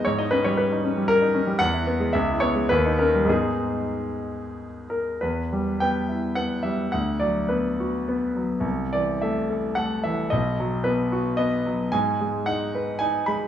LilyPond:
<<
  \new Staff \with { instrumentName = "Grand piano" } { \time 3/4 \key gis \minor \tempo 4 = 108 cis''16 dis''16 b'16 cis''16 b'4 ais'4 | fis''4 e''8 cis''8 b'8 ais'8 | gis'2~ gis'8 ais'8 | \key e \minor b'4 g''4 fis''8 e''8 |
fis''8 d''8 b'4 r4 | r8 d''8 e''4 fis''8 e''8 | dis''4 b'4 dis''4 | \key gis \minor gis''4 fis''4 gis''8 b''8 | }
  \new Staff \with { instrumentName = "Grand piano" } { \time 3/4 \key gis \minor gis,16 dis'16 cis'16 g8 dis'16 cis'16 g8 dis'16 cis'16 g16 | e,16 e'16 b16 gis16 cis,16 e'16 b16 gis16 dis,16 dis'16 cis'16 g16 | <gis, gis b dis'>2. | \key e \minor e,8 g8 b8 e'8 b8 g8 |
d,8 fis8 b8 fis'8 b8 fis8 | c,8 e8 a8 a'8 a8 e8 | b,,8 fis8 b8 fis'8 b8 fis8 | \key gis \minor gis,8 gis8 dis'8 b'8 dis'8 gis8 | }
>>